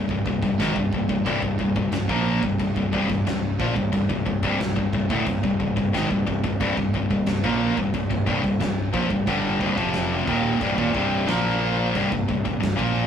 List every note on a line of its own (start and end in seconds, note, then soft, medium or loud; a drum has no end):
0.09 0.24 C1 medium
0.09 0.25 C2 medium
0.09 0.26 G2 medium
0.09 kick medium
0.25 0.41 C1 medium
0.25 0.42 C2 medium
0.25 0.42 G2 medium
0.25 kick medium
0.42 0.57 C1 medium
0.42 0.59 C2 medium
0.42 0.59 G2 medium
0.42 kick loud
0.42 snare soft
0.58 0.74 G#1 loud
0.58 0.75 G#2 medium
0.58 0.75 D#3 loud
0.58 snare loud
0.58 crash medium
0.76 0.91 C1 medium
0.76 0.93 C2 medium
0.76 0.93 G2 medium
0.76 kick loud
0.92 1.08 C1 medium
0.92 1.08 C2 medium
0.92 1.09 G2 medium
0.92 kick loud
1.09 1.24 C1 medium
1.09 1.25 C2 medium
1.09 1.26 G2 medium
1.09 kick loud
1.25 1.41 C1 loud
1.25 1.41 C2 loud
1.25 1.42 G2 loud
1.25 kick loud
1.25 crash medium
1.42 1.58 C1 medium
1.42 1.58 C2 medium
1.42 1.59 G2 medium
1.42 kick loud
1.59 1.75 C1 medium
1.59 1.74 C2 medium
1.59 1.75 G2 medium
1.59 kick medium
1.76 1.91 C1 medium
1.76 1.92 C2 medium
1.76 1.92 G2 medium
1.76 kick medium
1.92 2.08 C1 medium
1.92 2.09 C2 medium
1.92 2.09 G2 medium
1.92 snare loud
1.92 crash medium
2.09 2.40 A#1 medium
2.09 2.42 A#2 medium
2.09 2.42 F3 medium
2.09 2.42 A#3 medium
2.09 kick loud
2.43 2.58 C1 medium
2.43 2.58 C2 medium
2.43 2.59 G2 medium
2.43 kick loud
2.59 2.75 C1 medium
2.59 2.75 C2 medium
2.59 2.76 G2 medium
2.59 kick medium
2.59 crash medium
2.76 2.91 C1 medium
2.76 2.92 C2 medium
2.76 2.93 G2 medium
2.76 kick medium
2.93 3.09 C1 loud
2.93 3.08 C2 loud
2.93 3.09 G2 loud
2.93 kick loud
3.09 3.25 C1 medium
3.09 3.26 C2 medium
3.09 3.26 G2 medium
3.09 kick loud
3.09 snare soft
3.26 3.57 C1 medium
3.26 3.53 C2 medium
3.26 3.53 G2 medium
3.26 snare loud
3.26 crash medium
3.59 3.75 A#1 loud
3.59 3.75 A#2 medium
3.59 3.76 F3 loud
3.59 kick loud
3.75 3.91 C1 medium
3.75 3.91 C2 medium
3.75 3.91 G2 medium
3.75 kick loud
3.92 4.08 C1 medium
3.92 4.08 C2 medium
3.92 4.08 G2 medium
3.92 kick medium
3.92 crash medium
4.09 4.25 C1 medium
4.09 4.24 C2 medium
4.09 4.24 G2 medium
4.09 kick loud
4.25 4.42 C1 medium
4.25 4.42 C2 medium
4.25 4.43 G2 medium
4.25 kick medium
4.43 4.58 C1 loud
4.43 4.58 C2 medium
4.43 4.58 G2 medium
4.43 kick loud
4.59 4.75 C1 medium
4.59 4.75 C2 medium
4.59 4.75 G2 medium
4.59 snare loud
4.59 crash medium
4.76 4.92 C1 medium
4.76 4.93 C2 medium
4.76 4.93 G2 medium
4.76 kick medium
4.93 5.09 C1 medium
4.93 5.10 C2 medium
4.93 5.10 G2 medium
4.93 kick loud
5.10 5.25 D1 loud
5.10 5.26 D2 medium
5.10 5.26 A2 loud
5.10 kick loud
5.26 5.42 C1 medium
5.26 5.42 C2 medium
5.26 5.42 G2 medium
5.26 kick medium
5.26 crash medium
5.43 5.59 C1 medium
5.43 5.58 C2 medium
5.43 5.58 G2 medium
5.43 kick loud
5.59 5.76 C1 medium
5.59 5.75 C2 medium
5.59 5.75 G2 medium
5.59 kick medium
5.76 5.92 C1 medium
5.76 5.93 C2 medium
5.76 5.93 G2 medium
5.76 kick loud
5.92 6.09 G#1 loud
5.92 6.09 G#2 medium
5.92 6.09 D#3 loud
5.92 snare loud
5.92 crash medium
6.10 6.26 C1 medium
6.10 6.25 C2 medium
6.10 6.25 G2 medium
6.10 kick medium
6.26 6.43 C1 medium
6.26 6.42 C2 medium
6.26 6.43 G2 medium
6.26 kick medium
6.43 6.59 C1 medium
6.43 6.59 C2 medium
6.43 6.59 G2 medium
6.43 kick medium
6.60 6.76 C1 loud
6.60 6.76 C2 medium
6.60 6.76 G2 loud
6.60 kick loud
6.60 crash medium
6.77 6.93 C1 medium
6.77 6.94 C2 medium
6.77 6.94 G2 medium
6.77 kick medium
6.94 7.10 C1 medium
6.94 7.09 C2 medium
6.94 7.09 G2 medium
6.94 kick medium
7.10 7.26 C1 medium
7.10 7.26 C2 medium
7.10 7.26 G2 medium
7.10 kick medium
7.26 7.42 C1 medium
7.26 7.43 C2 medium
7.26 7.44 G2 medium
7.26 snare loud
7.26 crash medium
7.44 7.75 A#1 medium
7.44 7.76 A#2 medium
7.44 7.77 F3 medium
7.44 7.77 A#3 medium
7.44 kick loud
7.77 7.93 C1 medium
7.77 7.93 C2 medium
7.77 7.93 G2 medium
7.77 kick medium
7.93 8.09 C1 medium
7.93 8.08 C2 medium
7.93 8.09 G2 medium
7.93 kick medium
7.93 crash medium
8.10 8.26 C1 medium
8.10 8.25 C2 medium
8.10 8.26 G2 medium
8.10 kick loud
8.26 8.43 C1 loud
8.26 8.42 C2 loud
8.26 8.42 G2 medium
8.26 kick loud
8.43 8.58 C1 medium
8.43 8.58 C2 medium
8.43 8.59 G2 medium
8.43 kick medium
8.43 snare soft
8.59 8.91 C1 medium
8.59 8.87 C2 medium
8.59 8.88 G2 medium
8.59 snare loud
8.59 crash medium
8.93 9.09 A#1 medium
8.93 9.10 A#2 loud
8.93 9.10 F3 loud
8.93 kick loud
9.10 9.26 C1 medium
9.10 9.27 C2 medium
9.10 9.26 G2 medium
9.10 kick medium
9.27 9.58 G1 loud
9.27 9.60 G2 medium
9.27 9.60 D3 medium
9.27 9.61 G3 medium
9.27 kick loud
9.27 crash medium
9.60 9.76 C1 loud
9.60 9.76 C2 medium
9.60 9.77 G2 medium
9.60 kick loud
9.77 10.24 F1 medium
9.77 10.27 F2 medium
9.77 10.27 C3 medium
9.77 10.27 F3 loud
9.77 kick loud
9.93 snare loud
9.93 crash medium
10.27 10.59 D#1 loud
10.27 10.60 D#2 medium
10.27 10.61 A#2 medium
10.27 10.61 D#3 loud
10.27 kick loud
10.61 10.77 C1 medium
10.61 10.77 C2 medium
10.61 10.78 G2 loud
10.61 kick loud
10.61 crash medium
10.77 10.93 D#1 medium
10.77 10.94 D#2 medium
10.77 10.94 A#2 loud
10.77 kick loud
10.95 11.26 C1 medium
10.95 11.28 C2 medium
10.95 11.28 G2 medium
10.95 11.28 C3 loud
10.95 kick loud
11.27 11.91 A#1 loud
11.27 11.94 A#2 medium
11.27 11.94 F3 medium
11.27 11.95 A#3 loud
11.27 snare loud
11.27 crash medium
11.94 12.10 C1 loud
11.94 12.11 C2 medium
11.94 12.11 G2 loud
11.94 kick loud
11.94 crash medium
12.11 12.27 C1 medium
12.11 12.27 C2 medium
12.11 12.27 G2 medium
12.11 kick loud
12.28 12.44 C1 medium
12.28 12.43 C2 medium
12.28 12.44 G2 medium
12.28 kick medium
12.44 12.60 C1 medium
12.44 12.59 C2 medium
12.44 12.59 G2 medium
12.44 kick loud
12.60 12.77 C1 medium
12.60 12.75 C2 medium
12.60 12.76 G2 medium
12.60 snare loud
12.60 crash medium
12.76 13.07 A#1 loud
12.76 13.07 A#2 medium
12.76 13.07 F3 medium
12.76 13.07 A#3 loud
12.76 kick loud